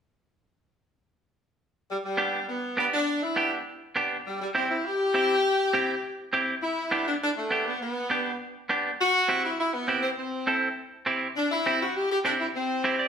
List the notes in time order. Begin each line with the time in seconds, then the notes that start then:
1.90 G3
2.04 G3
2.17 B3 D4 G4
2.48 B3
2.77 B3 D4 G4
2.93 D4
3.22 E4
3.36 B3 D4 G4
3.96 B3 D4 G4
4.27 G3
4.42 G3
4.55 C4 E4 G4
4.71 E4
4.86 G4
5.14 C4 E4 G4
5.73 C4 E4 G4
6.33 C4 E4 G4
6.63 E4
6.91 B3 D4 G4
7.08 D4
7.23 D4
7.37 A3
7.51 B3 D4 G4
7.66 B3
7.81 B3
8.10 B3 D4 G4
8.69 B3 D4 G4
9.00 F#4
9.28 C4 E4 G4
9.45 E4
9.59 E4
9.73 B3
9.88 C4 E4 G4
10.03 C4
10.17 C4
10.47 C4 E4 A4
11.06 C4 E4 G4
11.37 D4
11.51 E4
11.66 C4 E4 G4
11.82 F#4
11.96 G4
12.11 G4
12.25 C4 D4 E4 G4
12.40 E4
12.55 C4
12.84 C4 E4 G4
12.99 D5